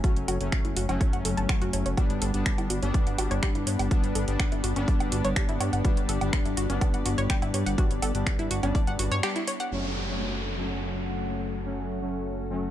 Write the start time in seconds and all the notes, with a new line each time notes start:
0.04 F#3 A3 C#4 F#4, kick, closed hi-hat
0.16 F#1, closed hi-hat
0.28 F#1 F#4, open hi-hat, low woodblock
0.40 F#1 F#3 A3 C#4, closed hi-hat
0.52 finger snap, kick, closed hi-hat
0.65 F#1 E4, closed hi-hat
0.77 F#1 F#4, open hi-hat
0.89 F#1 F#3 A3 C#4, closed hi-hat, low woodblock
1.01 C#5, kick, open hi-hat
1.13 F#1 F#5, closed hi-hat
1.25 F#1 A4, open hi-hat
1.37 G1 A5, closed hi-hat
1.49 F#4, finger snap, kick, closed hi-hat, low woodblock
1.62 F#1 F#4, closed hi-hat
1.73 F#1 C#5, open hi-hat
1.86 F#1 C#5, closed hi-hat
1.97 G3 B3 D4 F#4 G4 D5, kick, closed hi-hat, low woodblock
2.10 G1, closed hi-hat
2.22 G1 A4, open hi-hat
2.34 G1 G3 B3 D4, closed hi-hat
2.46 finger snap, kick, closed hi-hat
2.58 G1 E4, closed hi-hat, low woodblock
2.70 G1 F#4, open hi-hat
2.82 G1 G3 B3 C#4 D4, closed hi-hat
2.94 D5, kick, closed hi-hat
3.07 G1 F#5, closed hi-hat
3.18 G1 F#4, open hi-hat, low woodblock
3.31 G1 C#5, closed hi-hat
3.43 G4, finger snap, kick, closed hi-hat
3.55 G1 E4, closed hi-hat
3.67 G2 C#5, open hi-hat
3.79 G1 F#5, open hi-hat, low woodblock
3.91 G3 B3 D4 F#4, kick, closed hi-hat
4.04 G1, closed hi-hat
4.15 G1 A4, open hi-hat
4.28 G1 G3 B3 D4, closed hi-hat
4.40 finger snap, kick, closed hi-hat, low woodblock
4.52 G1 E4, closed hi-hat
4.64 G1 F#4, open hi-hat
4.76 G1 G3 B3 C#4 D4, closed hi-hat
4.88 D5, kick, open hi-hat
5.00 G1 F#5, closed hi-hat, low woodblock
5.12 G1 F#4, open hi-hat
5.25 G1 C#5, closed hi-hat
5.36 G4, finger snap, kick, closed hi-hat
5.49 G1 E4, closed hi-hat
5.60 G2 C#5, open hi-hat, low woodblock
5.73 G1 F#5, closed hi-hat
5.85 G3 B3 D4 F#4, kick, closed hi-hat
5.97 G1, closed hi-hat
6.09 G1 A4, open hi-hat
6.21 G1 G3 B3 D4, closed hi-hat, low woodblock
6.33 finger snap, kick, closed hi-hat
6.45 G1 E4, closed hi-hat
6.57 G1 F#4, open hi-hat
6.70 G1 G3 B3 C#4 D4, closed hi-hat
6.81 D5, kick, closed hi-hat, low woodblock
6.94 G1 F#5, closed hi-hat
7.06 G1 F#4, open hi-hat
7.18 G1 C#5, closed hi-hat
7.30 G4, finger snap, kick, closed hi-hat
7.42 G1 E4, closed hi-hat, low woodblock
7.54 G2 C#5, open hi-hat
7.66 G1 F#5, open hi-hat
7.78 G3 B3 D4 F#4, kick, closed hi-hat
7.90 G1, closed hi-hat
8.02 G1 A4, open hi-hat, low woodblock
8.15 G1 G3 B3 D4, closed hi-hat
8.27 finger snap, kick, closed hi-hat
8.39 G1 E4, closed hi-hat
8.51 G1 F#4, open hi-hat
8.63 G1 G3 B3 C#4 D4, closed hi-hat, low woodblock
8.75 D5, kick, open hi-hat
8.87 G1 F#5, closed hi-hat
8.99 G1 F#4, open hi-hat
9.11 G2 C#5, closed hi-hat
9.23 G3 B3 D4 G4, finger snap, closed hi-hat, low woodblock
9.36 E4, closed hi-hat
9.47 C#5, open hi-hat
9.60 F#5, closed hi-hat
9.72 F#1 F#3 A3 C#4 F#4 A4 F#5, downlifter
10.08 F#3 A3 C#4
10.57 F#3 A3 C#4
11.65 F#3 A3 C#4
12.02 F#3 A3 C#4
12.50 F#3 A3 C#4